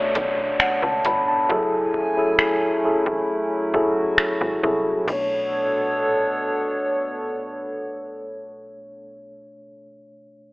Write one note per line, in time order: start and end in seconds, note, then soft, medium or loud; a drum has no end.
0.00 1.52 B2 medium
0.00 1.46 A3 medium
0.00 1.51 A3 medium
0.00 1.46 B3 medium
0.00 1.52 C#4 medium
0.00 1.46 D4 medium
0.00 1.52 D4 medium
0.00 1.52 C#5 loud
0.00 1.21 D5 medium
0.00 downlifter medium
0.15 0.53 B1 medium
0.15 kick loud
0.15 closed hi-hat medium
0.38 kick medium
0.60 0.82 F#5 medium
0.60 finger snap loud
0.60 closed hi-hat medium
0.82 1.01 C#2 medium
0.82 1.04 A5 medium
0.82 kick loud
1.05 1.42 G1 medium
1.05 1.27 B5 medium
1.05 closed hi-hat medium
1.28 1.70 A5 medium
1.50 1.87 F#1 loud
1.50 2.13 F#3 loud
1.50 5.04 F#3 medium
1.50 5.04 A3 medium
1.50 5.04 C#4 medium
1.50 5.04 E4 medium
1.50 2.13 E4 loud
1.50 2.13 G#4 medium
1.50 2.14 A4 loud
1.50 3.27 G#5 medium
1.50 kick loud
1.94 kick loud
2.17 2.80 F#3 medium
2.17 2.80 E4 medium
2.17 2.81 G#4 medium
2.17 2.81 A4 medium
2.39 finger snap loud
2.84 2.93 E1 soft
2.84 3.68 F#3 medium
2.84 3.68 E4 medium
2.84 3.69 G#4 medium
2.84 3.69 A4 medium
3.06 3.25 E1 medium
3.06 kick loud
3.28 5.06 F#4 medium
3.73 4.11 F#1 medium
3.73 4.58 F#3 medium
3.73 4.58 E4 medium
3.73 4.58 G#4 medium
3.73 4.59 A4 medium
4.18 finger snap loud
4.41 4.59 G#1 medium
4.63 5.00 C2 medium
4.63 5.05 F#3 medium
4.63 5.05 E4 medium
4.63 5.06 G#4 medium
4.63 5.06 A4 medium
5.04 9.42 B1 loud
5.04 9.60 B2 medium
5.04 9.42 B2 medium
5.04 9.63 A3 medium
5.04 9.42 B3 medium
5.04 9.42 D4 medium
5.04 9.42 A4 medium
5.04 9.42 C#5 medium
5.04 kick loud
5.04 crash medium
5.10 9.66 D4 medium
5.10 9.68 C#5 medium